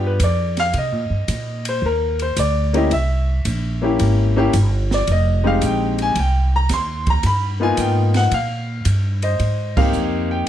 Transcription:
0.00 0.18 G2 medium
0.00 0.16 B3 medium
0.00 0.16 D4 medium
0.00 0.16 F4 medium
0.00 0.17 G4 medium
0.07 0.21 B4 medium
0.20 0.72 F2 medium
0.20 0.58 D5 medium
0.20 kick soft
0.20 hi-hat pedal medium
0.20 ride medium
0.57 0.75 F5 loud
0.57 snare soft
0.57 ride soft
0.73 0.92 C3 medium
0.73 kick soft
0.73 ride medium
0.78 1.64 D#5 medium
0.92 1.10 A#2 medium
1.10 1.27 G2 medium
1.28 1.81 A#2 medium
1.28 kick soft
1.28 hi-hat pedal medium
1.28 ride medium
1.65 1.83 C5 medium
1.65 ride medium
1.82 2.35 D#2 medium
1.82 2.20 A#4 medium
1.82 kick soft
2.19 2.37 C5 medium
2.19 ride soft
2.36 2.89 D2 loud
2.36 2.74 D5 medium
2.36 kick soft
2.36 hi-hat pedal medium
2.36 ride medium
2.73 2.89 A#3 medium
2.73 2.89 C#4 medium
2.73 2.89 E4 medium
2.73 2.90 G4 medium
2.73 2.92 D#5 medium
2.73 ride soft
2.91 3.43 C2 medium
2.91 3.96 E5 medium
2.91 kick soft
2.91 ride medium
3.45 3.98 A#1 medium
3.45 kick soft
3.45 hi-hat pedal soft
3.45 ride medium
3.82 4.32 A#3 medium
3.82 4.33 C#4 medium
3.82 4.33 E4 medium
3.82 4.33 G4 medium
3.99 4.52 G#1 medium
3.99 kick soft
3.99 ride medium
4.36 4.52 A#3 medium
4.36 4.52 C#4 medium
4.36 4.52 E4 medium
4.36 4.52 G4 medium
4.53 5.06 G1 loud
4.53 kick soft
4.53 hi-hat pedal medium
4.53 ride medium
4.91 5.09 D5 medium
4.91 snare medium
5.07 5.60 F1 medium
5.07 kick soft
5.07 ride medium
5.12 5.46 D#5 medium
5.43 6.12 G#3 medium
5.43 6.12 C4 medium
5.43 6.12 D#4 medium
5.43 6.13 G4 medium
5.43 5.62 F5 medium
5.61 6.14 A#1 medium
5.61 kick soft
5.61 hi-hat pedal medium
5.61 ride medium
5.66 6.00 G5 medium
5.98 6.17 G#5 loud
5.98 ride soft
6.15 6.68 C2 medium
6.15 6.54 G5 medium
6.15 kick soft
6.15 ride medium
6.56 6.71 A#5 loud
6.69 7.22 D#2 medium
6.69 kick soft
6.69 snare soft
6.69 hi-hat pedal medium
6.69 ride medium
6.73 7.08 C6 medium
7.07 7.25 A#5 medium
7.07 kick medium
7.07 ride soft
7.23 7.76 G2 medium
7.23 7.62 B5 loud
7.23 kick soft
7.23 ride medium
7.60 8.28 A#3 medium
7.60 8.29 B3 medium
7.60 8.29 D#4 medium
7.60 8.29 F4 medium
7.60 7.79 G#5 loud
7.77 8.30 G#2 medium
7.77 8.15 G5 medium
7.77 kick soft
7.77 hi-hat pedal medium
7.77 ride medium
8.14 8.32 F#5 loud
8.14 snare medium
8.14 ride soft
8.31 8.84 A#2 medium
8.31 8.83 F5 medium
8.31 kick soft
8.31 ride medium
8.85 9.38 G2 medium
8.85 kick soft
8.85 hi-hat pedal medium
8.85 ride medium
9.22 10.28 C5 medium
9.22 9.79 D#5 medium
9.22 ride soft
9.39 9.92 G#2 medium
9.39 kick soft
9.39 ride medium
9.77 10.45 A#3 medium
9.77 10.45 C4 medium
9.77 10.45 D#4 medium
9.77 10.45 G4 medium
9.77 10.28 F5 medium
9.77 kick medium
9.77 crash medium
9.93 10.46 F2 medium
9.93 hi-hat pedal medium
10.31 10.47 G5 medium

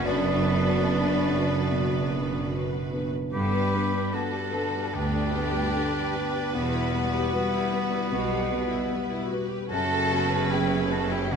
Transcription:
0.00 3.09 F#1 medium
0.00 3.09 F#2 medium
0.06 0.47 F#2 medium
0.06 3.09 B3 medium
0.06 2.48 B3 medium
0.06 2.48 D4 medium
0.06 3.09 F#4 medium
0.06 3.09 B4 medium
0.06 2.51 D5 medium
0.48 0.85 B3 soft
0.48 0.85 D4 soft
0.48 0.85 B4 soft
0.90 1.26 B3 soft
0.90 1.26 D4 soft
0.90 1.27 B4 soft
1.29 1.66 B3 soft
1.29 1.66 D4 soft
1.29 1.67 B4 soft
1.70 2.10 B2 soft
2.12 2.48 B3 soft
2.12 2.48 D4 soft
2.12 2.48 B4 soft
2.53 2.89 B3 soft
2.53 2.89 D4 soft
2.53 2.90 B4 soft
2.93 3.29 B3 soft
2.93 3.30 D4 soft
2.93 3.30 B4 soft
3.32 4.01 G1 medium
3.32 4.00 G2 medium
3.32 3.73 G2 medium
3.32 3.53 D3 medium
3.32 3.73 B3 medium
3.32 4.15 G4 medium
3.32 4.10 B4 medium
3.32 9.66 B4 medium
3.32 4.17 B5 medium
3.54 3.74 G3 soft
3.74 3.94 B3 soft
3.74 4.10 B3 soft
3.74 4.10 D4 soft
3.74 4.11 B4 soft
3.94 4.14 D4 medium
4.13 4.34 B3 soft
4.13 4.50 B3 soft
4.13 4.51 D4 soft
4.13 4.95 F#4 medium
4.13 4.95 A4 medium
4.13 4.51 B4 soft
4.13 4.95 A5 medium
4.33 4.54 G3 soft
4.54 4.74 D3 soft
4.54 4.90 B3 soft
4.54 4.90 D4 soft
4.54 4.90 B4 soft
4.72 4.93 G3 soft
4.93 5.61 D2 medium
4.93 5.33 D2 soft
4.93 5.12 B3 soft
4.93 6.53 D4 medium
4.93 6.55 G4 medium
4.93 6.53 G5 medium
5.14 5.34 D4 soft
5.33 5.53 B3 soft
5.33 5.71 B3 soft
5.33 5.71 D4 soft
5.33 5.71 B4 soft
5.53 5.74 G3 soft
5.73 5.93 D3 soft
5.73 6.10 B3 soft
5.73 6.11 D4 soft
5.73 6.11 B4 soft
5.93 6.14 G3 soft
6.13 6.34 B3 soft
6.13 6.50 B3 soft
6.13 6.51 D4 soft
6.13 6.51 B4 soft
6.34 6.54 D4 soft
6.53 7.20 E1 medium
6.53 7.20 E2 medium
6.53 6.93 E2 soft
6.53 9.66 G3 medium
6.53 6.72 B3 soft
6.53 9.26 B3 medium
6.53 9.27 F#4 medium
6.53 9.26 F#5 medium
6.73 6.93 E4 medium
6.93 7.30 G3 soft
6.93 7.30 B3 soft
6.93 7.13 F#4 soft
6.93 7.30 B4 soft
7.13 7.33 G4 medium
7.33 7.68 G3 soft
7.33 7.68 B3 soft
7.33 7.52 F#4 medium
7.33 7.69 B4 soft
7.52 7.72 E4 medium
7.72 8.08 G3 soft
7.72 7.92 B3 soft
7.72 8.08 B3 soft
7.72 8.08 B4 soft
7.91 8.11 E4 medium
8.11 8.77 B1 medium
8.11 8.77 B2 medium
8.11 8.50 B2 medium
8.11 8.29 F#4 medium
8.31 8.51 G4 soft
8.50 8.88 G3 soft
8.50 8.87 B3 soft
8.50 8.70 F#4 medium
8.50 8.88 B4 soft
8.69 8.90 E4 medium
8.89 9.10 B3 medium
8.89 9.27 B3 soft
8.93 9.28 G3 soft
8.93 9.28 B4 soft
9.10 9.30 E4 medium
9.29 9.67 B3 soft
9.29 9.50 F#4 medium
9.29 9.67 G4 soft
9.29 9.67 B4 soft
9.48 9.69 G4 medium
9.68 11.36 F#1 medium
9.68 11.36 F#2 medium
9.68 10.10 F#2 medium
9.68 11.27 C#3 medium
9.68 11.27 C#4 medium
9.68 10.52 F#4 medium
9.68 10.47 A4 loud
9.68 11.28 B4 medium
9.68 10.53 A5 medium
10.12 10.48 B3 soft
10.12 10.48 F#4 soft
10.12 10.48 B4 soft
10.50 10.87 B3 soft
10.50 10.88 C#4 soft
10.50 10.93 E4 medium
10.50 10.91 G4 medium
10.50 10.88 B4 medium
10.50 10.93 G5 medium
10.90 11.28 B3 soft
10.90 11.28 F#4 soft
10.90 11.13 F#4 medium
10.90 11.11 A4 medium
10.90 11.28 B4 soft
10.90 11.13 A5 medium
11.11 11.34 E4 medium
11.11 11.32 G4 medium
11.11 11.34 G5 medium
11.30 11.36 C#2 medium
11.30 11.36 F#3 medium
11.30 11.36 C#4 medium
11.30 11.36 F#4 medium
11.30 11.36 F#4 loud
11.30 11.36 B4 medium
11.30 11.36 F#5 medium

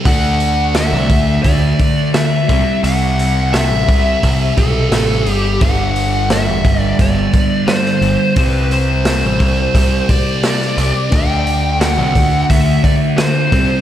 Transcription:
0.05 0.94 D2 medium
0.05 2.47 D3 medium
0.05 2.48 A3 medium
0.05 2.52 D4 medium
0.05 0.75 F#5 loud
0.05 kick loud
0.05 open hi-hat medium
0.40 open hi-hat soft
0.75 1.41 E5 medium
0.75 snare loud
0.75 open hi-hat medium
0.93 1.06 C2 medium
1.10 1.37 D2 medium
1.10 kick medium
1.10 open hi-hat soft
1.43 1.72 D2 medium
1.43 2.10 D5 medium
1.43 kick medium
1.43 open hi-hat medium
1.79 kick medium
1.79 open hi-hat soft
2.14 2.80 E5 medium
2.14 snare loud
2.14 open hi-hat medium
2.49 2.63 C2 medium
2.49 5.25 C3 medium
2.49 5.64 G3 medium
2.49 5.26 C4 medium
2.49 kick medium
2.49 open hi-hat soft
2.84 3.71 C2 medium
2.84 3.56 F#5 loud
2.84 open hi-hat medium
3.19 open hi-hat soft
3.53 4.54 E5 medium
3.53 snare medium
3.53 open hi-hat medium
3.71 3.85 A1 medium
3.88 4.15 C2 medium
3.88 kick medium
3.88 open hi-hat medium
4.23 4.50 C2 medium
4.23 kick medium
4.23 open hi-hat medium
4.57 4.89 B1 medium
4.57 5.33 A4 medium
4.57 kick medium
4.57 open hi-hat soft
4.92 5.23 A1 medium
4.92 snare loud
4.92 open hi-hat medium
5.26 5.58 G1 medium
5.26 open hi-hat soft
5.33 5.65 G4 medium
5.61 6.48 G1 medium
5.61 8.36 G2 medium
5.61 8.36 D3 medium
5.61 8.37 G3 medium
5.61 6.27 F#5 loud
5.61 kick loud
5.61 open hi-hat medium
5.96 open hi-hat medium
6.30 6.80 E5 medium
6.30 snare loud
6.30 open hi-hat medium
6.48 6.61 E1 medium
6.65 6.92 G1 medium
6.65 kick medium
6.65 open hi-hat soft
6.80 6.97 D5 medium
6.99 7.26 G1 medium
6.99 7.72 D5 medium
6.99 kick medium
6.99 open hi-hat medium
7.33 kick medium
7.33 open hi-hat soft
7.68 8.33 C5 medium
7.68 snare loud
7.68 open hi-hat medium
7.86 snare soft
8.01 8.15 G1 medium
8.01 open hi-hat soft
8.36 9.24 C2 medium
8.36 11.10 C3 medium
8.36 11.12 G3 medium
8.36 11.11 C4 medium
8.36 8.70 B4 loud
8.36 kick loud
8.36 open hi-hat medium
8.71 10.14 C5 loud
8.71 open hi-hat soft
9.05 snare loud
9.05 open hi-hat medium
9.24 9.37 A1 medium
9.40 9.67 C2 medium
9.40 kick medium
9.40 open hi-hat soft
9.74 10.01 C2 medium
9.74 kick medium
9.74 open hi-hat medium
10.09 11.16 D5 medium
10.09 kick medium
10.09 open hi-hat medium
10.43 snare loud
10.43 open hi-hat medium
10.61 snare soft
10.78 10.91 C2 medium
10.78 open hi-hat soft
11.11 12.00 D2 medium
11.11 13.50 D3 medium
11.11 13.51 A3 medium
11.11 13.54 D4 medium
11.11 11.80 G5 loud
11.11 kick loud
11.11 open hi-hat medium
11.47 open hi-hat soft
11.81 12.46 F#5 loud
11.81 snare loud
11.81 open hi-hat medium
11.99 12.12 C2 medium
12.15 12.42 D2 medium
12.15 kick medium
12.15 open hi-hat soft
12.50 12.77 D2 medium
12.50 12.82 E5 medium
12.50 kick medium
12.50 open hi-hat medium
12.84 12.94 D5 medium
12.84 kick medium
12.84 open hi-hat soft
13.18 13.81 C5 medium
13.18 snare loud
13.18 open hi-hat medium
13.52 13.66 C2 medium
13.52 13.81 C3 medium
13.52 13.81 G3 medium
13.52 13.81 C4 medium
13.52 kick medium
13.52 open hi-hat soft

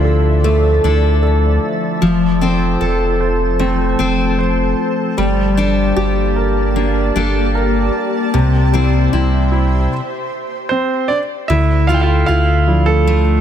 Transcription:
0.00 0.80 D2 medium
0.00 1.98 D3 medium
0.00 2.02 D3 medium
0.00 5.14 F3 medium
0.00 0.43 A3 medium
0.00 0.83 D4 medium
0.00 0.83 E4 medium
0.00 1.19 F4 medium
0.00 0.85 A4 medium
0.00 1.99 D5 medium
0.00 1.99 E5 medium
0.00 8.30 A5 medium
0.05 1.21 A4 medium
0.44 3.59 A3 medium
0.44 1.98 A3 medium
0.84 1.59 D2 loud
0.84 2.10 D4 medium
0.84 2.10 E4 medium
0.84 2.42 A4 medium
1.23 1.99 A4 medium
2.02 2.77 F1 loud
2.02 5.14 F3 medium
2.02 5.17 F3 medium
2.02 5.15 A4 medium
2.02 5.14 C5 medium
2.41 3.98 C4 medium
2.41 3.58 C4 medium
2.41 2.80 A4 medium
2.41 3.99 C5 medium
2.81 3.95 F1 loud
2.81 3.99 A4 medium
2.81 4.35 A4 medium
3.20 4.37 C5 medium
3.59 5.61 A3 medium
3.59 5.14 C4 medium
3.99 4.74 F1 medium
3.99 5.25 C4 medium
3.99 5.58 A4 medium
3.99 5.26 C5 medium
4.39 5.15 C5 medium
5.18 5.93 G1 loud
5.18 8.29 G3 medium
5.18 8.34 G3 medium
5.18 8.30 A#3 medium
5.18 9.87 G4 medium
5.18 8.30 D5 medium
5.57 6.75 D4 medium
5.57 7.14 D4 medium
5.57 5.96 G4 medium
5.57 7.15 A4 medium
5.96 7.11 G1 medium
5.96 7.16 G4 medium
5.96 7.50 G4 medium
6.36 7.54 A#4 soft
6.76 8.42 A#3 medium
6.76 8.30 D4 medium
7.15 7.90 G1 loud
7.15 8.42 D4 medium
7.15 8.42 G4 medium
7.15 8.42 A4 medium
7.55 8.31 A#4 medium
8.34 9.09 C2 loud
8.34 9.87 C3 medium
8.34 9.99 C3 medium
8.34 9.90 C5 medium
8.34 9.90 E5 medium
8.34 9.90 C6 medium
8.73 9.88 G3 medium
8.73 10.00 C4 medium
8.73 9.12 E4 medium
8.73 10.00 C5 medium
9.12 9.88 C2 medium
9.12 9.89 C4 medium
9.12 10.00 E4 medium
9.52 9.90 E4 medium
10.69 11.08 C4 medium
10.69 11.10 C5 medium
11.08 11.19 D4 medium
11.08 11.17 D5 medium
11.48 12.24 D2 loud
11.48 13.41 D3 medium
11.48 11.86 E4 medium
11.48 11.89 E5 medium
11.87 13.41 D4 medium
11.87 12.27 E4 medium
11.87 11.96 F4 medium
11.87 13.41 A4 medium
11.87 11.95 F5 medium
11.94 12.02 G5 medium
12.01 12.27 F4 medium
12.01 12.25 F5 medium
12.26 13.41 D2 medium
12.26 13.41 E4 medium
12.26 12.84 F4 medium
12.26 12.88 F5 medium
12.67 13.20 F3 soft
12.67 13.20 D4 soft
12.67 13.20 E4 medium
12.86 13.41 A3 medium
12.86 13.41 A4 medium
13.07 13.41 A3 medium

